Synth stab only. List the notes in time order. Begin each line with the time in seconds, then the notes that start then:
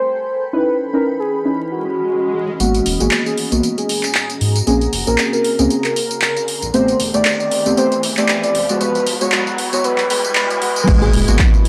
Already playing: G3 A3 C4 G4
0.53 C#4 D#4 E4 B4
0.93 C#4 D#4 E4 B4
1.45 C#4 D#4 E4 B4
2.60 G#3 A#3 B3 F#4
3.00 G#3 A#3 B3 F#4
3.52 G#3 A#3 B3 F#4
4.67 A#3 C4 C#4 G#4
5.07 A#3 C4 C#4 G#4
5.59 A#3 C4 C#4 G#4
6.74 A3 B3 C4 G4
7.14 A3 B3 C4 G4
7.66 A3 B3 C4 G4
7.77 A3 B3 C4 G4
8.17 A3 B3 C4 G4
8.69 G#3 B3 F#4
8.81 G#3 B3 F#4
9.21 G#3 B3 F#4
9.32 G#3 B3 F#4
9.73 G#3 B3 F#4
9.84 G#3 B3 F#4
10.10 G#3 B3 F#4
10.36 G#3 B3 F#4
10.62 G#3 B3 F#4
10.88 G#3 A#3 B3 F#4
11.28 G#3 A#3 B3 F#4